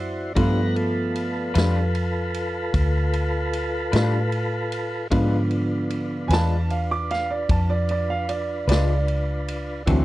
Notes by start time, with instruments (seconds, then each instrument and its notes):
Already playing: fingered electric bass F#2, grand piano E3 F#3 C4 D5, tonewheel organ E4 F#4 C5
0.35 fingered electric bass G2, grand piano F3 A3 B3, clean electric guitar G3 D4 F4 B4, tonewheel organ B4 F#5 A#5, kick, ride
0.75 tonewheel organ F4 A4 B4, ride
1.16 ride
1.54 fingered electric bass F2, clean electric guitar G3 D4 F4 B4, snare, ride
1.95 ride
2.34 ride
2.74 fingered electric bass D2, kick, ride
3.13 ride
3.53 ride
3.92 fingered electric bass A2, clean electric guitar G3 D4 F4 B4, snare, ride
4.32 ride
4.72 ride
5.11 fingered electric bass G#2, grand piano D3 F3 B3, clean electric guitar G#3 D4 F4 B4, tonewheel organ D4 F4 B4, kick, ride
5.51 ride
5.90 ride
6.28 fingered electric bass E2, clean electric guitar D4 F4 B4, grand piano G#5, ride
6.32 clean electric guitar G#3, grand piano A5, snare
6.70 grand piano F5, ride
6.91 grand piano D6
7.11 grand piano F5, snare, ride
7.30 grand piano D5
7.49 fingered electric bass F2, grand piano A5, kick, ride
7.70 grand piano D5
7.89 grand piano D5, ride
8.10 grand piano F5
8.29 grand piano D5, ride
8.67 fingered electric bass C#2, clean electric guitar G#3 D4 F4 B4, grand piano D5, ride
8.72 snare
9.08 ride
9.48 ride
9.86 fingered electric bass D2, clean electric guitar D3 C4 F#4 A4, grand piano E3 F#3 C4, tonewheel organ E4 F#4 C5, kick, ride